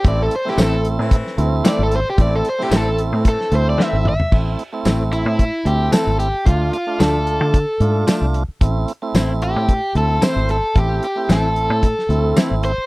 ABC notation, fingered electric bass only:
X:1
M:4/4
L:1/16
Q:"Swing 16ths" 1/4=112
K:Am
V:1 name="Fingered electric bass" clef=bass
A,,,2 z2 A,,,3 A,,2 z D,,2 z ^G,,,2 z | A,,,2 z2 A,,,3 A,,2 z D,,2 z ^G,,,2 z | A,,,2 z2 A,,,3 A,,2 z D,,2 z ^G,,,2 z | D,,2 z2 D,,3 D,2 z ^G,,2 z C,,2 z |
A,,,2 z2 A,,,3 A,,2 z D,,2 z ^G,,,2 z | A,,,2 z2 A,,,3 A,,2 z D,,2 z ^G,,,2 z |]